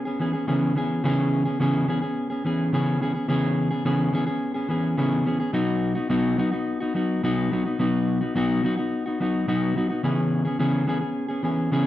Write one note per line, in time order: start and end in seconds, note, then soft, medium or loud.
0.05 0.19 B3 soft
0.05 0.20 C#4 medium
0.05 0.20 G#4 medium
0.19 0.34 E3 medium
0.19 0.34 B3 medium
0.19 0.33 C#4 medium
0.19 0.32 G#4 medium
0.33 0.47 B3 soft
0.33 0.47 C#4 medium
0.33 0.48 G#4 medium
0.47 0.76 C#3 medium
0.47 0.74 E3 medium
0.47 0.75 B3 medium
0.47 0.76 C#4 medium
0.47 0.76 G#4 medium
0.75 1.03 E3 medium
0.75 1.04 B3 medium
0.75 1.04 C#4 medium
0.75 1.04 G#4 medium
1.04 1.46 C#3 medium
1.04 1.46 E3 medium
1.04 1.46 B3 medium
1.04 1.45 C#4 medium
1.04 1.44 G#4 loud
1.45 1.59 B3 medium
1.45 1.59 C#4 medium
1.45 1.60 G#4 medium
1.60 1.88 C#3 medium
1.60 1.87 E3 medium
1.60 1.87 B3 medium
1.60 1.88 C#4 medium
1.60 1.89 G#4 medium
1.88 2.02 E3 medium
1.88 2.02 B3 medium
1.88 2.02 C#4 medium
1.88 2.01 G#4 medium
2.02 2.31 B3 soft
2.02 2.30 C#4 soft
2.02 2.29 G#4 medium
2.30 2.44 B3 soft
2.30 2.44 C#4 soft
2.30 2.44 G#4 medium
2.45 2.72 E3 medium
2.45 2.73 B3 medium
2.45 2.73 C#4 medium
2.45 2.73 G#4 medium
2.73 3.01 C#3 medium
2.73 2.99 E3 medium
2.73 3.01 B3 medium
2.73 3.01 C#4 medium
2.73 3.02 G#4 medium
3.01 3.15 E3 medium
3.01 3.15 B3 medium
3.01 3.15 C#4 medium
3.01 3.13 G#4 medium
3.15 3.28 B3 soft
3.15 3.28 C#4 soft
3.15 3.28 G#4 medium
3.28 3.71 C#3 medium
3.28 3.71 E3 medium
3.28 3.71 B3 medium
3.28 3.71 C#4 medium
3.28 3.69 G#4 medium
3.71 3.84 B3 medium
3.71 3.84 C#4 medium
3.71 3.85 G#4 medium
3.85 4.13 C#3 medium
3.85 4.12 E3 medium
3.85 4.12 B3 medium
3.85 4.13 C#4 loud
3.85 4.14 G#4 medium
4.13 4.27 E3 medium
4.13 4.27 B3 medium
4.13 4.26 C#4 medium
4.13 4.25 G#4 medium
4.27 4.55 B3 soft
4.27 4.54 C#4 medium
4.27 4.53 G#4 medium
4.54 4.68 B3 soft
4.54 4.69 C#4 medium
4.54 4.69 G#4 medium
4.69 4.96 E3 medium
4.69 4.97 B3 medium
4.69 4.97 C#4 medium
4.69 4.98 G#4 medium
4.97 5.26 C#3 medium
4.97 5.24 E3 medium
4.97 5.25 B3 medium
4.97 5.26 C#4 medium
4.97 5.26 G#4 medium
5.25 5.40 E3 medium
5.25 5.40 B3 medium
5.25 5.40 C#4 medium
5.25 5.39 G#4 medium
5.40 5.52 B3 soft
5.40 5.53 C#4 medium
5.40 5.54 G#4 medium
5.53 5.96 B2 medium
5.53 5.96 F#3 medium
5.53 5.96 B3 medium
5.53 5.95 D#4 medium
5.53 5.94 F#4 medium
5.95 6.09 B3 medium
5.95 6.09 D#4 medium
5.95 6.10 F#4 medium
6.09 6.38 B2 medium
6.09 6.36 F#3 medium
6.09 6.37 B3 medium
6.09 6.38 D#4 medium
6.09 6.38 F#4 medium
6.37 6.52 F#3 medium
6.37 6.52 B3 medium
6.37 6.52 D#4 medium
6.37 6.50 F#4 medium
6.52 6.81 B3 soft
6.52 6.81 D#4 medium
6.52 6.79 F#4 medium
6.80 6.94 B3 soft
6.80 6.94 D#4 medium
6.80 6.95 F#4 medium
6.94 7.22 F#3 medium
6.94 7.23 B3 medium
6.94 7.23 D#4 medium
6.94 7.24 F#4 medium
7.23 7.51 B2 medium
7.23 7.50 F#3 medium
7.23 7.51 B3 medium
7.23 7.52 D#4 medium
7.23 7.52 F#4 medium
7.51 7.65 F#3 medium
7.51 7.66 B3 medium
7.51 7.65 D#4 medium
7.51 7.64 F#4 medium
7.65 7.79 B3 soft
7.65 7.79 D#4 medium
7.65 7.79 F#4 medium
7.79 8.21 B2 medium
7.79 8.21 F#3 medium
7.79 8.22 B3 medium
7.79 8.21 D#4 medium
7.79 8.20 F#4 medium
8.21 8.34 B3 medium
8.21 8.35 D#4 medium
8.21 8.35 F#4 medium
8.35 8.63 B2 medium
8.35 8.62 F#3 medium
8.35 8.63 B3 medium
8.35 8.64 D#4 loud
8.35 8.64 F#4 loud
8.63 8.77 F#3 medium
8.63 8.78 B3 medium
8.63 8.77 D#4 medium
8.63 8.76 F#4 medium
8.77 9.06 B3 medium
8.77 9.06 D#4 medium
8.77 9.05 F#4 medium
9.06 9.20 B3 soft
9.06 9.20 D#4 medium
9.06 9.20 F#4 medium
9.20 9.47 F#3 medium
9.20 9.47 B3 medium
9.20 9.47 D#4 medium
9.20 9.48 F#4 medium
9.47 9.76 B2 medium
9.47 9.75 F#3 medium
9.47 9.76 B3 medium
9.47 9.76 D#4 medium
9.47 9.76 F#4 medium
9.76 9.90 F#3 medium
9.76 9.90 B3 medium
9.76 9.89 D#4 medium
9.76 9.88 F#4 medium
9.89 10.03 B3 soft
9.89 10.04 D#4 soft
9.89 10.04 F#4 medium
10.03 10.46 C#3 medium
10.03 10.46 E3 medium
10.03 10.46 B3 medium
10.03 10.45 C#4 medium
10.03 10.44 G#4 medium
10.45 10.58 B3 medium
10.45 10.59 C#4 medium
10.45 10.59 G#4 medium
10.59 10.88 C#3 medium
10.59 10.86 E3 medium
10.59 10.86 B3 medium
10.59 10.87 C#4 medium
10.59 10.88 G#4 medium
10.87 11.02 E3 medium
10.87 11.01 B3 medium
10.87 11.01 C#4 medium
10.87 10.99 G#4 medium
11.01 11.29 B3 soft
11.01 11.29 C#4 soft
11.01 11.27 G#4 medium
11.29 11.43 B3 soft
11.29 11.43 C#4 medium
11.29 11.44 G#4 medium
11.43 11.71 E3 medium
11.43 11.71 B3 medium
11.43 11.72 C#4 medium
11.43 11.72 G#4 medium
11.71 11.87 C#3 medium
11.71 11.87 E3 medium
11.71 11.87 B3 medium
11.71 11.87 C#4 medium
11.71 11.87 G#4 loud